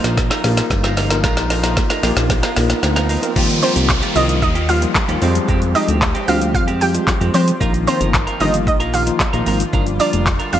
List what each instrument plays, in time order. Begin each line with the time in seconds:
Already playing: analog synth pad F3 A#3 D#4 F4, tine electric piano A#3 D#4 F4 A#4, riser
0.04 analog synth bass A#1, muted clean electric guitar stroke, snare, closed hi-hat, shaker
0.17 muted clean electric guitar stroke, kick, snare, shaker
0.30 clean electric guitar D#4 F4 A#4, snare, closed hi-hat, shaker
0.44 analog synth bass A#1, tine electric piano A#3 D#4 F4 A#4, muted clean electric guitar stroke, snare, open hi-hat, shaker
0.57 muted clean electric guitar stroke, snare, closed hi-hat, shaker
0.70 analog synth bass G1, muted clean electric guitar stroke, kick, snare, shaker
0.84 clean electric guitar D#4 F4 A#4, snare, closed hi-hat, shaker
0.97 clean electric guitar D#4 F4 A#4, snare, open hi-hat, shaker
1.10 tine electric piano A#3 D#4 F4 A#4, muted clean electric guitar stroke, snare, closed hi-hat, shaker
1.23 analog synth bass A#1, tine electric piano A#3 D#4 F4 A#4, clean electric guitar D#4 F4 A#4, kick, snare, shaker
1.37 muted clean electric guitar stroke, snare, closed hi-hat, shaker
1.50 clean electric guitar D#4 F4 A#4, snare, open hi-hat, shaker
1.63 tine electric piano A#3 D#4 F4 A#4, clean electric guitar D#4 F4 A#4, snare, closed hi-hat, shaker
1.77 muted clean electric guitar stroke, kick, snare, shaker
1.90 clean electric guitar D#4 F4 A#4, snare, closed hi-hat, shaker
2.03 analog synth bass A#1, tine electric piano A#3 D#4 F4 G4, clean electric guitar D#4 F4 A#4, snare, open hi-hat, shaker
2.17 analog synth bass A#1, snare, closed hi-hat, shaker
2.30 muted clean electric guitar stroke, kick, snare, shaker
2.43 clean electric guitar D#4 F4 A#4, snare, closed hi-hat, shaker
2.56 analog synth bass A#1, tine electric piano A#3 D#4 F4 A#4, muted clean electric guitar stroke, snare, open hi-hat, shaker
2.70 muted clean electric guitar stroke, snare, closed hi-hat, shaker
2.83 analog synth bass D2, muted clean electric guitar stroke, snare, shaker
2.96 clean electric guitar D#4 F4 A#4, snare, closed hi-hat, shaker
3.09 clean electric guitar D#4 F4 A#4, open hi-hat, shaker
3.23 tine electric piano A#3 D#4 F4 A#4, muted clean electric guitar stroke, closed hi-hat, shaker
3.36 analog synth bass D#2, analog synth pad D#3 G3 A#3 F4, tine electric piano F3 G3 A#3 D#4 F4, clean electric guitar A#3 F4 G4, kick, crash, downlifter, shaker
3.49 muted clean electric guitar stroke, closed hi-hat, shaker
3.62 clean electric guitar A#3 F4 G4, synth pluck C4 C5, open hi-hat, shaker
3.76 analog synth bass C2, clean electric guitar A#3 F4 G4, closed hi-hat, shaker
3.89 kick, snare, clap, shaker
4.02 clean electric guitar A#3 F4 G4, closed hi-hat, shaker
4.15 analog synth bass C2, tine electric piano F3 G3 A#3 D#4 F4, clean electric guitar A#3 F4 G4, synth pluck D#4 D#5, open hi-hat, shaker
4.29 muted clean electric guitar stroke, closed hi-hat, shaker
4.42 analog synth bass D#2, synth pluck D#4 D#5, muted clean electric guitar stroke, kick, shaker
4.55 clean electric guitar A#3 F4 G4, closed hi-hat, shaker
4.69 tine electric piano F3 G3 A#3 D#4 F4, synth pluck F4 F5, muted clean electric guitar stroke, open hi-hat, shaker
4.82 tine electric piano F3 G3 A#3 D#4 F4, muted clean electric guitar stroke, closed hi-hat, shaker
4.95 muted clean electric guitar stroke, kick, snare, clap, shaker
5.08 analog synth bass D#2, tine electric piano F3 G3 A#3 D#4 F4, clean electric guitar A#3 F4 G4, closed hi-hat, shaker
5.22 analog synth bass F2, tine electric piano F3 G3 G#3 C4 F4, analog synth pad F3 C4 G4, clean electric guitar G#3 C4 G4, open hi-hat, shaker
5.35 muted clean electric guitar stroke, closed hi-hat, shaker
5.48 analog synth bass F2, clean electric guitar G#3 C4 G4, kick, shaker
5.62 muted clean electric guitar stroke, closed hi-hat, shaker
5.75 clean electric guitar G#3 C4 G4, synth pluck D#4 D#5, open hi-hat, shaker
5.88 analog synth bass D2, clean electric guitar G#3 C4 G4, closed hi-hat, shaker
6.01 muted clean electric guitar stroke, kick, snare, clap, shaker
6.15 clean electric guitar G#3 C4 G4, closed hi-hat, shaker
6.28 analog synth bass D2, tine electric piano F3 G3 G#3 C4 F4, clean electric guitar G#3 C4 G4, synth pluck F4 F5, open hi-hat, shaker
6.41 muted clean electric guitar stroke, closed hi-hat, shaker
6.54 analog synth bass F2, synth pluck F4 F5, muted clean electric guitar stroke, kick, shaker
6.68 clean electric guitar G#3 C4 G4, closed hi-hat, shaker
6.81 tine electric piano F3 G3 G#3 C4 F4, synth pluck G4 G5, open hi-hat, shaker
6.94 tine electric piano F3 G3 G#3 C4 F4, muted clean electric guitar stroke, closed hi-hat, shaker
7.07 muted clean electric guitar stroke, kick, snare, clap, shaker
7.21 analog synth bass F2, tine electric piano F3 G3 G#3 C4 F4, clean electric guitar G#3 C4 G4, closed hi-hat, shaker
7.34 analog synth bass F3, clean electric guitar G#3 C4 G4, synth pluck C4 C5, open hi-hat, shaker
7.47 muted clean electric guitar stroke, closed hi-hat, shaker
7.60 analog synth bass A#1, tine electric piano D#3 F3 A#3 D#4 F4, analog synth pad D#3 A#3, clean electric guitar D#4 F4 A#4, kick, shaker
7.74 muted clean electric guitar stroke, closed hi-hat, shaker
7.87 synth pluck C4 C5, clean electric guitar D#4 F4 A#4, open hi-hat, shaker
8.00 analog synth bass G1, clean electric guitar D#4 F4 A#4, closed hi-hat, shaker
8.14 kick, snare, clap, shaker
8.27 clean electric guitar D#4 F4 A#4, closed hi-hat, shaker
8.40 analog synth bass G1, tine electric piano D#3 F3 A#3 D#4 G4, clean electric guitar D#4 F4 A#4, synth pluck D#4 D#5, open hi-hat, shaker
8.54 muted clean electric guitar stroke, closed hi-hat, shaker
8.67 analog synth bass A#1, synth pluck D#4 D#5, muted clean electric guitar stroke, kick, shaker
8.80 clean electric guitar D#4 F4 A#4, closed hi-hat, shaker
8.93 tine electric piano D#3 F3 A#3 D#4 G4, synth pluck F4 F5, muted clean electric guitar stroke, open hi-hat, shaker
9.07 tine electric piano D#3 F3 A#3 D#4 F4, muted clean electric guitar stroke, closed hi-hat, shaker
9.20 muted clean electric guitar stroke, kick, snare, clap, shaker
9.33 analog synth bass A#1, tine electric piano D#3 F3 A#3 D#4 F4, clean electric guitar D#4 F4 A#4, closed hi-hat, shaker
9.46 analog synth bass G#1, clean electric guitar D#4 F4 A#4, open hi-hat, shaker
9.60 muted clean electric guitar stroke, closed hi-hat, shaker
9.73 analog synth bass G1, analog synth pad D3 G3, tine electric piano F3 G3 A#3 D4 F4, clean electric guitar D4 F4 A#4, kick, shaker
9.86 muted clean electric guitar stroke, closed hi-hat, shaker
9.99 clean electric guitar D4 F4 A#4, synth pluck D4 D5, open hi-hat, shaker
10.13 analog synth bass F1, clean electric guitar D4 F4 A#4, closed hi-hat, shaker
10.26 muted clean electric guitar stroke, kick, snare, clap, shaker
10.39 clean electric guitar D4 F4 A#4, closed hi-hat, shaker
10.52 analog synth bass F1, tine electric piano F3 G3 A#3 D4 G4, clean electric guitar D4 F4 A#4, synth pluck F4 F5, open hi-hat, shaker